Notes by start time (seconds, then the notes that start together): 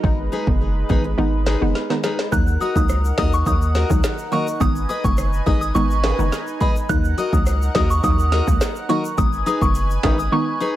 Already playing: D#4
0.03 G#1 D#3 G#3 B3 D#4 B4, kick
0.32 D#4 G#4 B4
0.47 F#1 D#3 G#3 B3 D#4, kick
0.89 G#1 D#3 G#3 B3 D#4 G#4 B4, kick
1.04 muted steel-string acoustic guitar stroke
1.18 G#1 D#3 G#3 B3 D#4
1.46 D#4 G#4 B4, snare
1.61 F#1 D#3 G#3 B3 D#4
1.75 snare
1.90 D#3 G#3 B3 D#4, snare
2.03 D#4 G#4 B4, snare
2.19 snare
2.32 D#2 D#3 F#3 A#3 D#4 A#4 F#5 F#6, kick, shaker
2.47 shaker
2.60 F#4 A#4 D#5 D#6, shaker
2.76 C#2 D#3 F#3 A#3 D#4 D#6, kick, shaker
2.89 cross-stick, shaker
3.05 shaker
3.18 D#2 D#3 F#3 A#3 D#4 F#4 A#4 D#5 D#6, kick, snare
3.33 C#6, shaker
3.46 D#2 D#3 F#3 A#3 D#4 D#6, kick, shaker
3.62 shaker
3.75 F#4 A#4 D#5, snare
3.90 C#2 D#3 F#3 A#3 D#4, kick, shaker
4.04 snare, shaker
4.18 shaker
4.32 D#3 F#3 A#3 D#4 F#4 A#4 D#5 C#6
4.48 shaker
4.60 G#1 D#3 G#3 B3 D#4 B4 G#5 D#6, kick, shaker
4.76 shaker
4.89 G#4 B4 D#5 D#6, shaker
5.04 F#1 D#3 G#3 B3 D#4 C#6, kick, shaker
5.18 cross-stick, shaker
5.33 shaker
5.46 G#1 D#3 G#3 B3 D#4 G#4 B4 D#5 D#6, kick
5.61 D#6, shaker
5.75 G#1 D#3 G#3 B3 D#4 C#6, shaker
5.91 shaker
6.03 G#4 B4 D#5, snare, high timbale
6.19 F#1 D#3 G#3 B3 D#4, shaker
6.32 snare, shaker
6.47 shaker
6.60 D#3 G#3 B3 D#4 G#4 B4 D#5 B5, kick
6.76 shaker
6.89 D#2 D#3 F#3 A#3 D#4 A#4 F#5 F#6, kick, closed hi-hat, shaker
7.04 shaker
7.18 F#4 A#4 D#5 D#6, closed hi-hat, shaker
7.33 C#2 D#3 F#3 A#3 D#4 D#6, kick, shaker
7.46 cross-stick, closed hi-hat, shaker
7.62 shaker
7.75 D#2 D#3 F#3 A#3 D#4 F#4 A#4 D#5 D#6, kick, snare, closed hi-hat
7.90 C#6, shaker
8.03 D#2 D#3 F#3 A#3 D#4 D#6, kick, closed hi-hat, shaker
8.19 shaker
8.32 F#4 A#4 D#5, snare, closed hi-hat
8.47 C#2 D#3 F#3 A#3 D#4, kick, shaker
8.61 snare, closed hi-hat, shaker
8.76 shaker
8.89 D#3 F#3 A#3 D#4 F#4 A#4 D#5 C#6, closed hi-hat
9.05 shaker
9.18 G#1 D#3 G#3 B3 D#4 B4 G#5 D#6, kick, closed hi-hat, shaker
9.33 shaker
9.46 D#4 G#4 B4 D#6, closed hi-hat, shaker
9.61 F#1 D#3 G#3 B3 D#4 C#6, kick, shaker
9.75 closed hi-hat, shaker
9.91 shaker
10.03 G#1 D#3 G#3 B3 D#4 G#4 B4 D#6, kick, snare, closed hi-hat, high timbale
10.19 D#6, shaker
10.32 D#3 G#3 B3 D#4 C#6
10.60 D#4 G#4 B4